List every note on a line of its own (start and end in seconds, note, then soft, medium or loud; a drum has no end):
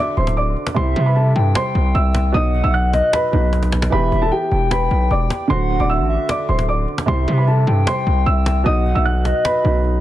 0.00 0.72 D3 medium
0.00 0.73 A3 medium
0.00 0.74 F#4 medium
0.00 0.14 D5 medium
0.00 0.33 E5 medium
0.00 0.13 D6 medium
0.17 0.55 D1 loud
0.17 0.33 C5 medium
0.17 0.33 C6 medium
0.17 cajon slap soft
0.27 cajon slap medium
0.37 0.74 D5 medium
0.37 0.74 D6 medium
0.37 cajon slap soft
0.57 cajon slap soft
0.67 cajon slap loud
0.74 0.95 C2 loud
0.74 2.30 C3 medium
0.74 2.31 G3 medium
0.74 1.05 C5 medium
0.74 1.32 E5 loud
0.74 1.04 C6 loud
0.74 cajon slap soft
0.79 2.32 E4 medium
0.96 1.34 C3 loud
0.96 cajon slap soft
1.06 1.14 B4 medium
1.06 1.14 B5 medium
1.16 1.53 A4 medium
1.16 1.53 A5 medium
1.16 cajon slap soft
1.36 1.55 G2 loud
1.36 2.30 G5 medium
1.55 1.93 C5 medium
1.55 1.93 C6 medium
1.55 cajon slap loud
1.75 1.94 C2 loud
1.75 cajon slap soft
1.95 2.33 C2 loud
1.95 2.32 E5 medium
1.95 2.32 E6 medium
1.95 cajon slap soft
2.15 cajon slap loud
2.24 cajon slap soft
2.32 2.63 B1 loud
2.32 3.30 B2 medium
2.32 3.31 F#3 medium
2.32 2.63 D#5 medium
2.32 2.90 F#5 loud
2.32 2.62 D#6 loud
2.32 cajon slap soft
2.37 3.32 D#4 medium
2.54 cajon slap soft
2.64 3.02 B1 loud
2.64 2.72 E5 medium
2.64 2.71 E6 medium
2.74 3.11 F#5 medium
2.74 3.11 F#6 medium
2.74 cajon slap soft
2.93 3.49 D#5 medium
2.93 cajon slap medium
3.13 3.89 B4 medium
3.13 3.88 B5 medium
3.13 cajon slap loud
3.32 3.90 B1 loud
3.32 3.92 B2 medium
3.32 3.92 F#3 soft
3.32 3.93 D#4 medium
3.32 cajon slap soft
3.53 cajon slap medium
3.63 cajon slap medium
3.72 cajon slap loud
3.77 cajon slap soft
3.82 cajon slap loud
3.87 5.46 E3 medium
3.87 cajon slap soft
3.92 4.11 E1 loud
3.92 5.47 B3 medium
3.92 5.48 G4 medium
3.92 4.21 B4 medium
3.92 4.48 E5 loud
3.92 4.20 B5 loud
3.92 cajon slap soft
4.12 4.31 E1 loud
4.12 cajon slap soft
4.22 4.30 A4 medium
4.22 4.30 A5 medium
4.32 4.69 G4 medium
4.32 4.69 G5 loud
4.32 cajon slap soft
4.51 4.89 E1 loud
4.51 5.46 G5 loud
4.71 5.09 B4 medium
4.71 5.08 B5 medium
4.71 cajon slap loud
4.91 5.10 B1 loud
4.91 cajon slap soft
5.11 5.30 E1 loud
5.11 5.48 D5 medium
5.11 5.48 D6 medium
5.11 cajon slap soft
5.30 cajon slap loud
5.40 cajon slap soft
5.48 5.79 D1 loud
5.48 7.04 D3 medium
5.48 7.05 A3 medium
5.48 5.78 C5 medium
5.48 6.06 F#5 loud
5.48 5.78 C6 loud
5.48 cajon slap soft
5.52 7.06 F#4 medium
5.70 cajon slap soft
5.80 6.01 D1 loud
5.80 5.88 D5 medium
5.80 5.88 D6 medium
5.90 6.27 E5 medium
5.90 6.27 E6 medium
5.90 cajon slap soft
5.99 6.18 A1 loud
6.09 6.65 E5 medium
6.29 6.45 D5 medium
6.29 6.45 D6 medium
6.29 cajon slap loud
6.48 6.87 D1 loud
6.48 6.65 C5 medium
6.48 6.64 C6 medium
6.48 cajon slap soft
6.59 cajon slap medium
6.69 7.06 D5 medium
6.69 7.06 D6 medium
6.69 cajon slap soft
6.88 cajon slap soft
6.98 cajon slap medium
7.06 7.27 C2 loud
7.06 8.62 C3 medium
7.06 8.63 G3 medium
7.06 7.36 C5 medium
7.06 7.63 E5 loud
7.06 7.36 C6 loud
7.06 cajon slap soft
7.10 8.64 E4 medium
7.28 7.66 C3 loud
7.28 cajon slap soft
7.38 7.46 B4 medium
7.38 7.45 B5 medium
7.47 7.85 A4 medium
7.47 7.85 A5 medium
7.47 cajon slap soft
7.67 7.86 G2 loud
7.67 8.62 G5 medium
7.87 8.25 C5 medium
7.87 8.24 C6 medium
7.87 cajon slap loud
8.06 8.26 C2 loud
8.06 cajon slap soft
8.26 8.64 C2 loud
8.26 8.64 E5 medium
8.26 8.63 E6 medium
8.26 cajon slap soft
8.46 cajon slap loud
8.56 cajon slap soft
8.64 8.94 B1 loud
8.64 9.62 B2 medium
8.64 9.63 F#3 medium
8.64 8.94 D#5 medium
8.64 9.22 F#5 loud
8.64 8.94 D#6 loud
8.64 cajon slap soft
8.68 9.64 D#4 medium
8.86 cajon slap soft
8.95 9.33 B1 loud
8.95 9.04 E5 medium
8.95 9.03 E6 medium
9.05 9.43 F#5 medium
9.05 9.43 F#6 medium
9.05 cajon slap soft
9.25 9.81 D#5 medium
9.25 cajon slap medium
9.45 10.01 B4 medium
9.45 10.01 B5 medium
9.45 cajon slap loud
9.63 10.01 B1 loud
9.63 10.01 B2 medium
9.63 10.01 F#3 soft
9.63 10.01 D#4 medium
9.63 cajon slap soft
9.84 cajon slap soft